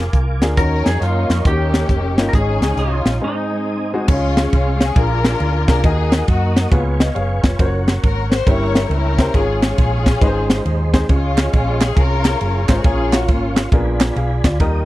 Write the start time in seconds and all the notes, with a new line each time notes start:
Already playing: F4 A#4 F5 G#5 D6
0.13 C2, kick, closed hi-hat
0.42 D2 A#3 D4 F4 G#4, snare, closed hi-hat
0.57 D#2 D#3 A#3 C#4 D#4 F#4 A#4 C#5 D#5 C#6, kick, closed hi-hat
0.86 F2 G#4, snare, closed hi-hat
1.01 F#2 A#3 C#4 F4, closed hi-hat
1.29 F2, snare, closed hi-hat
1.45 D#2 D#3 A#3 C#4 D#4 F#4 G4 G5, kick, closed hi-hat
1.52 G4
1.74 snare, closed hi-hat
1.89 F1, kick, closed hi-hat
2.17 G1 A#3 C#4 D#4 F4, snare, closed hi-hat
2.29 A#4 C#5 D#6
2.33 G#1 G#2 G#3 C#4 D#4 G#4 G#5, kick, closed hi-hat
2.60 C#2, snare, closed hi-hat
2.77 C2 G#3 C#4 F4, closed hi-hat
3.05 A#1, snare, closed hi-hat
3.20 G#2 G#3 C4 D#4 G#4 C5 D#5
3.24 D#4
3.94 G#3 C4 D#4 F#4
4.07 C#2 C#3 G#3 C#4 D#4 F4 G#4 C#5 F5 C#6, kick, crash
4.15 F4
4.37 snare, ride
4.53 C2 F4, kick, ride
4.81 G#4, snare, ride
4.96 A#1 A#2 A#3 D4 F4 G#4 A#4 G#5 D6, kick, ride
5.24 snare, ride
5.40 D2, ride
5.68 C2 A#3 D4 F4 G#4 A#4, kick, snare, ride
5.84 D#2 D#3 A#3 D#4 F#4 G#4 A#4 D#5 F#5 D#6, kick, ride
6.12 snare, ride
6.28 F#2 A#3 D#4 F#4, kick, ride
6.56 snare, ride
6.71 C#2 C#3 B3 C#4 F4 G#4 B4 F5 G#5 C#6, kick, ride
7.00 D#5, snare, ride
7.15 F#1 G#4 C#5 F5, ride
7.44 F1 F4 C#5, kick, snare, ride
7.59 F#1 A#3 C#4 F#4 A#4 C5 C#5 F#5, kick, ride
7.65 C#5
7.88 snare, ride
8.03 G#1 A#4, kick, ride
8.32 C5, snare, ride
8.47 G1 G2 A#3 C#4 E4 G4 A#4 C#5 E5 G5, kick, ride
8.75 snare, ride
8.90 C#2 C#4 E4 A#4, ride
9.18 A#3 C#4 E4 G4 C5, kick, snare, ride
9.34 G#1 G#2 G#3 C#4 F4 G#4 C#5 F5, kick, ride
9.62 C#4 F4 G#4, snare, ride
9.78 A#1, kick, ride
10.06 kick, snare, ride
10.21 G#1 G#2 G#3 D#4 G#4 B4 C5 D#5 C6, kick, ride
10.27 C5
10.50 snare, ride
10.65 D#2, ride
10.93 G#3 C4 D#4 G#4 C5, kick, snare, ride
11.09 C#2 C#3 G#3 C#4 F4 G#4 C#5 F5 C#6, kick, ride
11.38 snare, clap, ride
11.53 A#1 F4, kick, ride
11.81 G#4, snare, clap, ride
11.97 C2 C#4 F4 A#4, kick, ride
12.25 snare, clap, ride
12.41 F#1, ride
12.69 G#1 G#3 C#4 F4 G#4 A#4 C5, kick, snare, clap, ride
12.84 A#1 A#2 A#3 C#4 F4 G#4 A#4 C#5, kick, ride
13.13 F#4, snare, clap, ride
13.28 G#1 A#3 C#4 F4, kick, ride
13.56 snare, clap, ride
13.72 A#1 A#2 B3 D4 F4 G#4 A#4 D5 G#5 B5, kick, ride
14.00 snare, clap, ride
14.16 B1 G#4 F5, ride
14.44 D2 F4 D5, kick, snare, clap, ride
14.60 D#2 D#3 G3 A#3 D#4 G4 A#4 D#5 G5 D#6, kick, ride